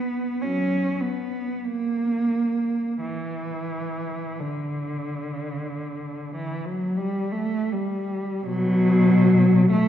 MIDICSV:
0, 0, Header, 1, 2, 480
1, 0, Start_track
1, 0, Key_signature, 2, "minor"
1, 0, Tempo, 1229508
1, 651, Tempo, 1366743
1, 1132, Time_signature, 4, 2, 24, 8
1, 1611, Tempo, 1324503
1, 2091, Tempo, 1250000
1, 2571, Tempo, 1481481
1, 3051, Tempo, 1242236
1, 3602, End_track
2, 0, Start_track
2, 0, Title_t, "Cello"
2, 0, Program_c, 0, 42
2, 0, Note_on_c, 0, 59, 57
2, 163, Note_off_c, 0, 59, 0
2, 163, Note_on_c, 0, 54, 43
2, 163, Note_on_c, 0, 61, 56
2, 384, Note_off_c, 0, 54, 0
2, 392, Note_on_c, 0, 59, 50
2, 400, Note_off_c, 0, 61, 0
2, 642, Note_on_c, 0, 58, 61
2, 647, Note_off_c, 0, 59, 0
2, 1124, Note_on_c, 0, 52, 58
2, 1128, Note_off_c, 0, 58, 0
2, 1598, Note_off_c, 0, 52, 0
2, 1608, Note_on_c, 0, 50, 43
2, 2330, Note_off_c, 0, 50, 0
2, 2332, Note_on_c, 0, 52, 45
2, 2443, Note_off_c, 0, 52, 0
2, 2450, Note_on_c, 0, 54, 50
2, 2568, Note_on_c, 0, 55, 57
2, 2571, Note_off_c, 0, 54, 0
2, 2680, Note_off_c, 0, 55, 0
2, 2682, Note_on_c, 0, 57, 56
2, 2811, Note_on_c, 0, 55, 55
2, 2812, Note_off_c, 0, 57, 0
2, 3051, Note_on_c, 0, 47, 73
2, 3052, Note_off_c, 0, 55, 0
2, 3053, Note_on_c, 0, 54, 88
2, 3519, Note_off_c, 0, 47, 0
2, 3526, Note_off_c, 0, 54, 0
2, 3534, Note_on_c, 0, 57, 90
2, 3602, Note_off_c, 0, 57, 0
2, 3602, End_track
0, 0, End_of_file